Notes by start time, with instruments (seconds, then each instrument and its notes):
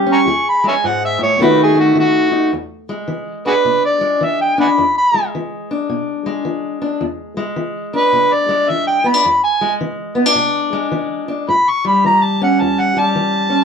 Already playing: steel-string acoustic guitar E3 G3 G4
0.07 steel-string acoustic guitar C#4
0.12 harmonica G#5 A#5 C#6
0.26 steel-string acoustic guitar E2 G#4
0.49 harmonica B5
0.64 steel-string acoustic guitar G#3
0.68 harmonica C#5 E5 G#5
0.84 steel-string acoustic guitar G#2, harmonica F#5
1.05 harmonica E5
1.18 steel-string acoustic guitar A2
1.23 harmonica C#5
1.39 steel-string acoustic guitar B2 D#3 A3 D#4 F#4, harmonica B4
1.63 harmonica G#4
1.75 steel-string acoustic guitar A3
1.80 harmonica F#4
1.95 steel-string acoustic guitar D#3, harmonica F#4
2.32 steel-string acoustic guitar D#4
2.53 steel-string acoustic guitar E2
2.89 steel-string acoustic guitar G#3
3.08 steel-string acoustic guitar E3
3.46 steel-string acoustic guitar D4, harmonica F#4 G#4 B4
3.65 steel-string acoustic guitar B2
3.85 harmonica D5
4.01 steel-string acoustic guitar G#3
4.21 steel-string acoustic guitar E3, harmonica E5
4.41 harmonica G5
4.58 steel-string acoustic guitar D4, harmonica F#5 G#5 B5
4.78 steel-string acoustic guitar E2
4.97 harmonica B5
5.14 steel-string acoustic guitar G#3
5.35 steel-string acoustic guitar E3
5.71 steel-string acoustic guitar D4
5.89 steel-string acoustic guitar B2
6.26 steel-string acoustic guitar G#3
6.45 steel-string acoustic guitar E3
6.82 steel-string acoustic guitar D4
7.01 steel-string acoustic guitar E2
7.37 steel-string acoustic guitar G#3
7.56 steel-string acoustic guitar E3
7.94 steel-string acoustic guitar D4, harmonica B4
8.13 steel-string acoustic guitar B2
8.33 harmonica D5
8.49 steel-string acoustic guitar G#3
8.69 steel-string acoustic guitar E3, harmonica E5
8.87 harmonica G5
9.04 steel-string acoustic guitar B3, harmonica B5
9.14 steel-string acoustic guitar D4
9.25 steel-string acoustic guitar E2
9.44 harmonica G#5
9.61 steel-string acoustic guitar G#3
9.81 steel-string acoustic guitar E3
10.15 steel-string acoustic guitar B3
10.26 steel-string acoustic guitar D4
10.35 steel-string acoustic guitar B2
10.73 steel-string acoustic guitar G#3
10.92 steel-string acoustic guitar E3
11.28 steel-string acoustic guitar D4
11.48 steel-string acoustic guitar A2, harmonica B5
11.69 harmonica C#6
11.85 steel-string acoustic guitar G3, harmonica B5
12.05 steel-string acoustic guitar E3, harmonica A#5
12.23 harmonica A5
12.42 steel-string acoustic guitar C#4, harmonica F#5
12.61 steel-string acoustic guitar E2, harmonica A5
12.80 harmonica F#5
12.97 steel-string acoustic guitar G3, harmonica A5
13.15 steel-string acoustic guitar E3
13.50 steel-string acoustic guitar C#4